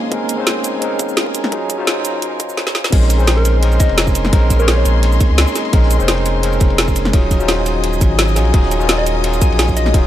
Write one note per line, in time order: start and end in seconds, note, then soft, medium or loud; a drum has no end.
0.00 0.11 G#3 medium
0.00 1.48 A#3 medium
0.00 1.54 A#3 medium
0.00 0.11 C4 medium
0.00 0.12 C#4 medium
0.00 0.12 D#4 medium
0.00 0.13 A#4 loud
0.00 0.11 C#5 loud
0.00 1.48 D#5 medium
0.00 2.89 F5 medium
0.00 2.89 G#5 medium
0.00 1.48 C6 medium
0.11 0.35 G#3 medium
0.11 0.36 C4 medium
0.11 0.36 C#4 medium
0.11 0.37 D#4 medium
0.11 0.37 A#4 medium
0.11 kick loud
0.11 closed hi-hat medium
0.29 closed hi-hat medium
0.29 shaker medium
0.36 0.78 G#3 medium
0.36 0.79 C4 medium
0.36 0.80 C#4 medium
0.36 0.81 D#4 medium
0.41 0.81 C5 loud
0.47 snare loud
0.47 closed hi-hat medium
0.64 closed hi-hat medium
0.64 shaker medium
0.79 1.49 G#3 loud
0.79 1.50 C4 medium
0.79 1.50 C#4 medium
0.79 1.51 D#4 medium
0.79 closed hi-hat medium
0.84 1.51 A#4 loud
0.99 kick loud
0.99 closed hi-hat medium
0.99 shaker medium
1.09 shaker soft
1.17 snare loud
1.17 closed hi-hat medium
1.26 kick medium
1.35 closed hi-hat medium
1.35 shaker medium
1.44 snare medium
1.51 1.75 F#3 medium
1.51 1.76 C#4 medium
1.51 1.77 D#4 medium
1.51 2.91 D#4 medium
1.51 1.77 F4 medium
1.51 1.77 G#4 loud
1.51 2.91 A#4 medium
1.51 kick loud
1.51 closed hi-hat medium
1.70 kick medium
1.70 closed hi-hat medium
1.70 shaker medium
1.77 2.56 F#3 loud
1.77 2.57 C#4 medium
1.77 2.57 D#4 medium
1.77 2.58 F4 medium
1.81 2.59 C5 loud
1.87 snare loud
1.87 closed hi-hat medium
2.05 closed hi-hat medium
2.05 shaker medium
2.22 closed hi-hat medium
2.40 kick loud
2.40 closed hi-hat medium
2.40 shaker medium
2.49 shaker soft
2.57 snare medium
2.67 snare medium
2.75 snare medium
2.84 snare medium
2.91 3.79 A#1 loud
2.91 3.16 G#3 medium
2.91 3.17 C4 medium
2.91 3.17 C#4 medium
2.91 3.17 D#4 medium
2.91 3.18 A#4 medium
2.91 7.09 D#5 medium
2.91 7.09 G#5 medium
2.91 7.09 C6 medium
2.91 kick loud
2.91 closed hi-hat medium
2.91 crash loud
2.91 ride medium
3.02 snare soft
3.10 closed hi-hat medium
3.10 ride medium
3.10 shaker medium
3.17 3.59 G#3 medium
3.17 3.60 C4 medium
3.17 3.61 C#4 medium
3.17 3.61 D#4 medium
3.17 shaker soft
3.22 3.62 C5 loud
3.27 snare loud
3.27 closed hi-hat medium
3.27 ride medium
3.37 3.58 A#4 medium
3.37 ride soft
3.45 closed hi-hat medium
3.45 ride medium
3.45 shaker medium
3.60 4.30 G#3 medium
3.60 4.30 C4 medium
3.60 4.31 C#4 medium
3.60 4.31 D#4 medium
3.60 closed hi-hat medium
3.60 ride medium
3.65 4.32 A#4 loud
3.72 ride soft
3.72 shaker soft
3.79 4.07 D#5 medium
3.79 kick loud
3.79 closed hi-hat medium
3.79 ride medium
3.79 shaker medium
3.89 4.32 F1 medium
3.89 ride soft
3.97 snare loud
3.97 closed hi-hat loud
3.97 ride medium
4.07 kick medium
4.07 shaker soft
4.15 closed hi-hat medium
4.15 ride medium
4.15 shaker medium
4.25 snare medium
4.32 4.84 A#1 loud
4.32 4.56 G#3 loud
4.32 4.57 C4 medium
4.32 4.57 C#4 medium
4.32 4.58 D#4 medium
4.32 4.58 A#4 loud
4.32 kick loud
4.32 closed hi-hat medium
4.32 ride medium
4.50 kick medium
4.50 closed hi-hat medium
4.50 ride medium
4.50 shaker medium
4.57 5.70 G#3 loud
4.57 5.71 A#3 medium
4.57 5.71 C#4 medium
4.57 5.72 D#4 medium
4.57 4.75 A#4 medium
4.57 shaker soft
4.62 5.72 C#5 loud
4.68 snare loud
4.68 closed hi-hat medium
4.68 ride medium
4.77 5.26 C#5 medium
4.77 snare soft
4.85 5.19 A#1 loud
4.85 closed hi-hat medium
4.85 ride medium
4.85 shaker medium
5.03 closed hi-hat medium
5.03 ride medium
5.12 shaker soft
5.20 kick loud
5.20 closed hi-hat medium
5.20 ride medium
5.20 shaker medium
5.30 5.46 C#2 loud
5.38 snare loud
5.38 closed hi-hat medium
5.38 ride medium
5.47 shaker soft
5.55 snare soft
5.55 closed hi-hat medium
5.55 ride medium
5.55 shaker medium
5.65 ride soft
5.72 5.99 A#1 loud
5.72 5.97 G#3 medium
5.72 5.98 C4 medium
5.72 5.98 C#4 medium
5.72 5.98 D#4 medium
5.72 5.99 A#4 medium
5.72 kick loud
5.72 closed hi-hat medium
5.72 ride medium
5.83 snare soft
5.91 closed hi-hat medium
5.91 ride medium
5.91 shaker medium
5.98 7.12 F1 medium
5.98 6.40 G#3 loud
5.98 6.41 C4 medium
5.98 6.41 C#4 medium
5.98 6.42 D#4 medium
5.98 shaker soft
6.03 6.43 C5 loud
6.08 snare loud
6.08 closed hi-hat medium
6.08 ride medium
6.18 ride soft
6.26 closed hi-hat medium
6.26 ride medium
6.26 shaker medium
6.41 7.10 G#3 medium
6.41 7.11 C4 medium
6.41 7.12 C#4 medium
6.41 7.12 D#4 medium
6.41 closed hi-hat medium
6.41 ride medium
6.46 7.13 A#4 loud
6.53 ride soft
6.53 shaker soft
6.60 kick loud
6.60 closed hi-hat medium
6.60 ride medium
6.60 shaker medium
6.70 ride soft
6.78 snare loud
6.78 closed hi-hat medium
6.78 ride medium
6.88 kick medium
6.88 shaker soft
6.96 closed hi-hat medium
6.96 ride medium
6.96 shaker medium
7.05 snare medium
7.12 8.00 D#1 medium
7.12 7.37 F#3 loud
7.12 7.38 C#4 medium
7.12 7.38 D#4 medium
7.12 7.39 F4 medium
7.12 7.39 G#4 loud
7.12 10.07 D#5 medium
7.12 10.07 G#5 medium
7.12 10.07 D#6 medium
7.12 kick loud
7.12 closed hi-hat medium
7.12 ride medium
7.31 kick medium
7.31 closed hi-hat medium
7.31 ride medium
7.31 shaker medium
7.38 8.34 F#3 loud
7.38 8.34 C#4 medium
7.38 8.35 D#4 medium
7.38 8.35 F4 medium
7.38 shaker soft
7.43 8.36 C5 loud
7.48 snare loud
7.48 closed hi-hat medium
7.48 ride medium
7.58 snare soft
7.66 closed hi-hat medium
7.66 ride medium
7.66 shaker medium
7.84 closed hi-hat medium
7.84 ride medium
7.93 shaker soft
8.01 8.38 G#1 loud
8.01 kick loud
8.01 closed hi-hat medium
8.01 ride medium
8.01 shaker medium
8.19 snare loud
8.19 closed hi-hat medium
8.19 ride medium
8.28 shaker soft
8.35 8.52 A#1 loud
8.35 8.51 F#3 medium
8.35 8.52 C#4 medium
8.35 8.52 D#4 medium
8.35 8.52 F4 medium
8.35 8.52 G#4 medium
8.35 snare soft
8.35 closed hi-hat medium
8.35 ride medium
8.35 shaker medium
8.45 ride soft
8.53 9.40 D#1 loud
8.53 8.77 F#3 medium
8.53 8.78 C#4 medium
8.53 8.79 D#4 medium
8.53 8.79 F4 medium
8.53 8.79 G#4 medium
8.53 kick loud
8.53 closed hi-hat medium
8.53 ride medium
8.63 snare soft
8.71 closed hi-hat medium
8.71 ride medium
8.71 shaker medium
8.78 9.20 F#3 medium
8.78 9.21 C#4 medium
8.78 9.22 D#4 medium
8.78 9.23 F4 medium
8.78 shaker soft
8.83 9.23 A#4 loud
8.89 snare loud
8.89 closed hi-hat medium
8.89 ride medium
8.98 9.19 D#5 medium
8.98 ride soft
9.06 closed hi-hat medium
9.06 ride medium
9.06 shaker medium
9.22 9.91 F#3 loud
9.22 9.92 C#4 medium
9.22 9.92 D#4 medium
9.22 9.93 F4 medium
9.22 closed hi-hat medium
9.22 ride medium
9.26 9.93 G#4 loud
9.33 ride soft
9.33 shaker soft
9.42 9.69 G#5 medium
9.42 kick loud
9.42 closed hi-hat medium
9.42 ride medium
9.42 shaker medium
9.51 9.93 A#1 medium
9.51 ride soft
9.59 snare loud
9.59 closed hi-hat medium
9.59 ride medium
9.68 kick medium
9.68 shaker soft
9.77 9.98 D#5 loud
9.77 closed hi-hat medium
9.77 ride medium
9.77 shaker medium
9.86 snare medium
9.93 10.07 D#1 loud
9.93 10.07 F#3 medium
9.93 10.07 C#4 medium
9.93 10.07 D#4 medium
9.93 10.07 F4 medium
9.93 10.07 G#4 loud
9.93 kick loud
9.93 closed hi-hat medium
9.93 ride medium